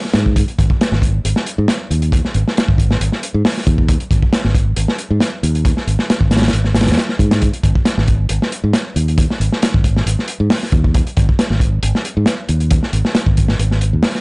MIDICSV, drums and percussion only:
0, 0, Header, 1, 2, 480
1, 0, Start_track
1, 0, Tempo, 441176
1, 391, Time_signature, 4, 2, 24, 8
1, 15459, End_track
2, 0, Start_track
2, 0, Title_t, "Drums"
2, 51, Note_on_c, 9, 38, 36
2, 147, Note_off_c, 9, 38, 0
2, 147, Note_on_c, 9, 38, 118
2, 150, Note_on_c, 9, 42, 84
2, 256, Note_off_c, 9, 38, 0
2, 259, Note_off_c, 9, 42, 0
2, 283, Note_on_c, 9, 36, 82
2, 392, Note_off_c, 9, 36, 0
2, 392, Note_on_c, 9, 36, 110
2, 394, Note_on_c, 9, 42, 96
2, 501, Note_off_c, 9, 36, 0
2, 503, Note_off_c, 9, 42, 0
2, 523, Note_on_c, 9, 42, 42
2, 632, Note_off_c, 9, 42, 0
2, 638, Note_on_c, 9, 36, 95
2, 639, Note_on_c, 9, 42, 73
2, 746, Note_off_c, 9, 36, 0
2, 747, Note_off_c, 9, 42, 0
2, 762, Note_on_c, 9, 36, 98
2, 871, Note_off_c, 9, 36, 0
2, 881, Note_on_c, 9, 42, 84
2, 885, Note_on_c, 9, 38, 112
2, 990, Note_off_c, 9, 42, 0
2, 994, Note_off_c, 9, 38, 0
2, 1004, Note_on_c, 9, 38, 57
2, 1109, Note_on_c, 9, 36, 86
2, 1113, Note_off_c, 9, 38, 0
2, 1120, Note_on_c, 9, 42, 64
2, 1218, Note_off_c, 9, 36, 0
2, 1229, Note_off_c, 9, 42, 0
2, 1359, Note_on_c, 9, 42, 91
2, 1468, Note_off_c, 9, 42, 0
2, 1480, Note_on_c, 9, 38, 60
2, 1589, Note_off_c, 9, 38, 0
2, 1593, Note_on_c, 9, 42, 69
2, 1702, Note_off_c, 9, 42, 0
2, 1828, Note_on_c, 9, 38, 121
2, 1839, Note_on_c, 9, 42, 91
2, 1937, Note_off_c, 9, 38, 0
2, 1948, Note_off_c, 9, 42, 0
2, 2077, Note_on_c, 9, 42, 65
2, 2185, Note_off_c, 9, 42, 0
2, 2198, Note_on_c, 9, 42, 45
2, 2307, Note_off_c, 9, 42, 0
2, 2309, Note_on_c, 9, 36, 114
2, 2318, Note_on_c, 9, 42, 78
2, 2418, Note_off_c, 9, 36, 0
2, 2427, Note_off_c, 9, 42, 0
2, 2444, Note_on_c, 9, 38, 39
2, 2550, Note_on_c, 9, 42, 63
2, 2553, Note_off_c, 9, 38, 0
2, 2659, Note_off_c, 9, 42, 0
2, 2694, Note_on_c, 9, 38, 48
2, 2800, Note_on_c, 9, 42, 80
2, 2802, Note_off_c, 9, 38, 0
2, 2808, Note_on_c, 9, 38, 124
2, 2909, Note_off_c, 9, 42, 0
2, 2917, Note_off_c, 9, 38, 0
2, 2920, Note_on_c, 9, 36, 93
2, 3027, Note_off_c, 9, 36, 0
2, 3027, Note_on_c, 9, 36, 92
2, 3040, Note_on_c, 9, 42, 62
2, 3136, Note_off_c, 9, 36, 0
2, 3149, Note_off_c, 9, 42, 0
2, 3161, Note_on_c, 9, 38, 60
2, 3270, Note_off_c, 9, 38, 0
2, 3276, Note_on_c, 9, 42, 92
2, 3385, Note_off_c, 9, 42, 0
2, 3398, Note_on_c, 9, 38, 38
2, 3507, Note_off_c, 9, 38, 0
2, 3514, Note_on_c, 9, 42, 62
2, 3623, Note_off_c, 9, 42, 0
2, 3753, Note_on_c, 9, 38, 115
2, 3756, Note_on_c, 9, 46, 76
2, 3862, Note_off_c, 9, 38, 0
2, 3865, Note_off_c, 9, 46, 0
2, 3889, Note_on_c, 9, 38, 40
2, 3991, Note_on_c, 9, 36, 94
2, 3994, Note_on_c, 9, 42, 70
2, 3998, Note_off_c, 9, 38, 0
2, 4100, Note_off_c, 9, 36, 0
2, 4103, Note_off_c, 9, 42, 0
2, 4115, Note_on_c, 9, 36, 91
2, 4224, Note_off_c, 9, 36, 0
2, 4227, Note_on_c, 9, 42, 100
2, 4228, Note_on_c, 9, 36, 124
2, 4336, Note_off_c, 9, 36, 0
2, 4336, Note_off_c, 9, 42, 0
2, 4354, Note_on_c, 9, 42, 47
2, 4463, Note_off_c, 9, 42, 0
2, 4468, Note_on_c, 9, 36, 90
2, 4475, Note_on_c, 9, 42, 63
2, 4577, Note_off_c, 9, 36, 0
2, 4584, Note_off_c, 9, 42, 0
2, 4597, Note_on_c, 9, 36, 93
2, 4706, Note_off_c, 9, 36, 0
2, 4707, Note_on_c, 9, 38, 117
2, 4714, Note_on_c, 9, 42, 91
2, 4816, Note_off_c, 9, 38, 0
2, 4823, Note_off_c, 9, 42, 0
2, 4837, Note_on_c, 9, 38, 53
2, 4945, Note_on_c, 9, 36, 101
2, 4946, Note_off_c, 9, 38, 0
2, 4949, Note_on_c, 9, 42, 70
2, 5054, Note_off_c, 9, 36, 0
2, 5058, Note_off_c, 9, 42, 0
2, 5183, Note_on_c, 9, 42, 91
2, 5292, Note_off_c, 9, 42, 0
2, 5313, Note_on_c, 9, 38, 54
2, 5422, Note_off_c, 9, 38, 0
2, 5422, Note_on_c, 9, 42, 63
2, 5531, Note_off_c, 9, 42, 0
2, 5663, Note_on_c, 9, 38, 107
2, 5673, Note_on_c, 9, 42, 85
2, 5771, Note_off_c, 9, 38, 0
2, 5782, Note_off_c, 9, 42, 0
2, 5912, Note_on_c, 9, 42, 68
2, 6021, Note_off_c, 9, 42, 0
2, 6038, Note_on_c, 9, 42, 43
2, 6147, Note_off_c, 9, 42, 0
2, 6147, Note_on_c, 9, 36, 115
2, 6149, Note_on_c, 9, 42, 87
2, 6255, Note_off_c, 9, 36, 0
2, 6258, Note_off_c, 9, 42, 0
2, 6277, Note_on_c, 9, 38, 40
2, 6386, Note_off_c, 9, 38, 0
2, 6393, Note_on_c, 9, 42, 63
2, 6502, Note_off_c, 9, 42, 0
2, 6516, Note_on_c, 9, 38, 50
2, 6625, Note_off_c, 9, 38, 0
2, 6636, Note_on_c, 9, 42, 84
2, 6638, Note_on_c, 9, 38, 118
2, 6744, Note_off_c, 9, 42, 0
2, 6747, Note_off_c, 9, 38, 0
2, 6753, Note_on_c, 9, 36, 91
2, 6862, Note_off_c, 9, 36, 0
2, 6865, Note_on_c, 9, 38, 85
2, 6867, Note_on_c, 9, 42, 65
2, 6927, Note_off_c, 9, 38, 0
2, 6927, Note_on_c, 9, 38, 85
2, 6933, Note_off_c, 9, 42, 0
2, 6933, Note_on_c, 9, 42, 60
2, 6986, Note_off_c, 9, 38, 0
2, 6986, Note_on_c, 9, 38, 87
2, 6995, Note_off_c, 9, 42, 0
2, 6995, Note_on_c, 9, 42, 70
2, 7052, Note_off_c, 9, 38, 0
2, 7052, Note_on_c, 9, 38, 97
2, 7053, Note_off_c, 9, 42, 0
2, 7053, Note_on_c, 9, 42, 76
2, 7105, Note_off_c, 9, 42, 0
2, 7105, Note_on_c, 9, 42, 91
2, 7160, Note_off_c, 9, 38, 0
2, 7214, Note_off_c, 9, 42, 0
2, 7230, Note_on_c, 9, 38, 38
2, 7339, Note_off_c, 9, 38, 0
2, 7340, Note_on_c, 9, 38, 87
2, 7347, Note_on_c, 9, 42, 69
2, 7408, Note_off_c, 9, 42, 0
2, 7408, Note_on_c, 9, 42, 73
2, 7412, Note_off_c, 9, 38, 0
2, 7412, Note_on_c, 9, 38, 92
2, 7471, Note_off_c, 9, 38, 0
2, 7471, Note_on_c, 9, 38, 82
2, 7479, Note_off_c, 9, 42, 0
2, 7479, Note_on_c, 9, 42, 69
2, 7529, Note_off_c, 9, 38, 0
2, 7529, Note_off_c, 9, 42, 0
2, 7529, Note_on_c, 9, 38, 83
2, 7529, Note_on_c, 9, 42, 71
2, 7589, Note_off_c, 9, 38, 0
2, 7589, Note_on_c, 9, 38, 99
2, 7591, Note_off_c, 9, 42, 0
2, 7591, Note_on_c, 9, 42, 81
2, 7698, Note_off_c, 9, 38, 0
2, 7700, Note_off_c, 9, 42, 0
2, 7714, Note_on_c, 9, 38, 45
2, 7823, Note_off_c, 9, 38, 0
2, 7826, Note_on_c, 9, 36, 84
2, 7831, Note_on_c, 9, 42, 67
2, 7935, Note_off_c, 9, 36, 0
2, 7939, Note_off_c, 9, 42, 0
2, 7956, Note_on_c, 9, 38, 104
2, 7957, Note_on_c, 9, 42, 83
2, 8065, Note_off_c, 9, 38, 0
2, 8065, Note_off_c, 9, 42, 0
2, 8068, Note_on_c, 9, 42, 87
2, 8075, Note_on_c, 9, 36, 108
2, 8177, Note_off_c, 9, 42, 0
2, 8184, Note_off_c, 9, 36, 0
2, 8197, Note_on_c, 9, 42, 48
2, 8305, Note_off_c, 9, 42, 0
2, 8306, Note_on_c, 9, 36, 87
2, 8307, Note_on_c, 9, 42, 72
2, 8415, Note_off_c, 9, 36, 0
2, 8416, Note_off_c, 9, 42, 0
2, 8437, Note_on_c, 9, 36, 95
2, 8545, Note_off_c, 9, 36, 0
2, 8545, Note_on_c, 9, 38, 108
2, 8547, Note_on_c, 9, 42, 89
2, 8654, Note_off_c, 9, 38, 0
2, 8656, Note_off_c, 9, 42, 0
2, 8679, Note_on_c, 9, 38, 54
2, 8786, Note_on_c, 9, 42, 64
2, 8788, Note_off_c, 9, 38, 0
2, 8794, Note_on_c, 9, 36, 86
2, 8895, Note_off_c, 9, 42, 0
2, 8902, Note_off_c, 9, 36, 0
2, 9021, Note_on_c, 9, 42, 95
2, 9130, Note_off_c, 9, 42, 0
2, 9164, Note_on_c, 9, 38, 55
2, 9272, Note_on_c, 9, 42, 66
2, 9273, Note_off_c, 9, 38, 0
2, 9381, Note_off_c, 9, 42, 0
2, 9503, Note_on_c, 9, 38, 113
2, 9505, Note_on_c, 9, 42, 88
2, 9612, Note_off_c, 9, 38, 0
2, 9614, Note_off_c, 9, 42, 0
2, 9749, Note_on_c, 9, 42, 64
2, 9858, Note_off_c, 9, 42, 0
2, 9881, Note_on_c, 9, 42, 48
2, 9985, Note_on_c, 9, 36, 107
2, 9988, Note_off_c, 9, 42, 0
2, 9988, Note_on_c, 9, 42, 86
2, 10094, Note_off_c, 9, 36, 0
2, 10097, Note_off_c, 9, 42, 0
2, 10123, Note_on_c, 9, 38, 42
2, 10232, Note_off_c, 9, 38, 0
2, 10238, Note_on_c, 9, 42, 66
2, 10346, Note_off_c, 9, 42, 0
2, 10363, Note_on_c, 9, 38, 49
2, 10471, Note_on_c, 9, 42, 90
2, 10472, Note_off_c, 9, 38, 0
2, 10477, Note_on_c, 9, 38, 117
2, 10580, Note_off_c, 9, 42, 0
2, 10586, Note_off_c, 9, 38, 0
2, 10601, Note_on_c, 9, 36, 96
2, 10707, Note_on_c, 9, 42, 71
2, 10709, Note_off_c, 9, 36, 0
2, 10709, Note_on_c, 9, 36, 91
2, 10816, Note_off_c, 9, 42, 0
2, 10818, Note_off_c, 9, 36, 0
2, 10842, Note_on_c, 9, 38, 53
2, 10951, Note_off_c, 9, 38, 0
2, 10954, Note_on_c, 9, 42, 96
2, 11063, Note_off_c, 9, 42, 0
2, 11085, Note_on_c, 9, 38, 34
2, 11182, Note_on_c, 9, 42, 70
2, 11194, Note_off_c, 9, 38, 0
2, 11291, Note_off_c, 9, 42, 0
2, 11425, Note_on_c, 9, 38, 119
2, 11426, Note_on_c, 9, 46, 91
2, 11534, Note_off_c, 9, 38, 0
2, 11535, Note_off_c, 9, 46, 0
2, 11564, Note_on_c, 9, 38, 41
2, 11666, Note_on_c, 9, 36, 109
2, 11666, Note_on_c, 9, 42, 75
2, 11673, Note_off_c, 9, 38, 0
2, 11775, Note_off_c, 9, 36, 0
2, 11775, Note_off_c, 9, 42, 0
2, 11797, Note_on_c, 9, 36, 89
2, 11906, Note_off_c, 9, 36, 0
2, 11906, Note_on_c, 9, 42, 86
2, 11909, Note_on_c, 9, 36, 118
2, 12015, Note_off_c, 9, 42, 0
2, 12018, Note_off_c, 9, 36, 0
2, 12041, Note_on_c, 9, 42, 43
2, 12149, Note_off_c, 9, 42, 0
2, 12149, Note_on_c, 9, 42, 71
2, 12154, Note_on_c, 9, 36, 99
2, 12258, Note_off_c, 9, 42, 0
2, 12263, Note_off_c, 9, 36, 0
2, 12283, Note_on_c, 9, 36, 95
2, 12391, Note_off_c, 9, 36, 0
2, 12391, Note_on_c, 9, 38, 112
2, 12392, Note_on_c, 9, 42, 89
2, 12500, Note_off_c, 9, 38, 0
2, 12501, Note_off_c, 9, 42, 0
2, 12521, Note_on_c, 9, 38, 53
2, 12623, Note_on_c, 9, 36, 87
2, 12629, Note_off_c, 9, 38, 0
2, 12633, Note_on_c, 9, 42, 73
2, 12732, Note_off_c, 9, 36, 0
2, 12741, Note_off_c, 9, 42, 0
2, 12868, Note_on_c, 9, 42, 85
2, 12977, Note_off_c, 9, 42, 0
2, 13002, Note_on_c, 9, 38, 54
2, 13110, Note_on_c, 9, 42, 74
2, 13111, Note_off_c, 9, 38, 0
2, 13218, Note_off_c, 9, 42, 0
2, 13337, Note_on_c, 9, 38, 111
2, 13348, Note_on_c, 9, 42, 83
2, 13446, Note_off_c, 9, 38, 0
2, 13457, Note_off_c, 9, 42, 0
2, 13585, Note_on_c, 9, 42, 69
2, 13694, Note_off_c, 9, 42, 0
2, 13713, Note_on_c, 9, 42, 41
2, 13821, Note_off_c, 9, 42, 0
2, 13824, Note_on_c, 9, 42, 96
2, 13830, Note_on_c, 9, 36, 124
2, 13933, Note_off_c, 9, 42, 0
2, 13939, Note_off_c, 9, 36, 0
2, 13956, Note_on_c, 9, 38, 43
2, 14065, Note_off_c, 9, 38, 0
2, 14068, Note_on_c, 9, 42, 75
2, 14177, Note_off_c, 9, 42, 0
2, 14196, Note_on_c, 9, 38, 54
2, 14305, Note_off_c, 9, 38, 0
2, 14305, Note_on_c, 9, 38, 118
2, 14309, Note_on_c, 9, 42, 87
2, 14413, Note_off_c, 9, 38, 0
2, 14417, Note_off_c, 9, 42, 0
2, 14432, Note_on_c, 9, 36, 96
2, 14540, Note_off_c, 9, 36, 0
2, 14548, Note_on_c, 9, 42, 62
2, 14558, Note_on_c, 9, 36, 86
2, 14657, Note_off_c, 9, 42, 0
2, 14667, Note_off_c, 9, 36, 0
2, 14670, Note_on_c, 9, 38, 58
2, 14779, Note_off_c, 9, 38, 0
2, 14791, Note_on_c, 9, 42, 91
2, 14900, Note_off_c, 9, 42, 0
2, 14919, Note_on_c, 9, 38, 35
2, 15026, Note_on_c, 9, 42, 69
2, 15028, Note_off_c, 9, 38, 0
2, 15135, Note_off_c, 9, 42, 0
2, 15261, Note_on_c, 9, 38, 112
2, 15268, Note_on_c, 9, 46, 83
2, 15369, Note_off_c, 9, 38, 0
2, 15377, Note_off_c, 9, 46, 0
2, 15396, Note_on_c, 9, 38, 41
2, 15459, Note_off_c, 9, 38, 0
2, 15459, End_track
0, 0, End_of_file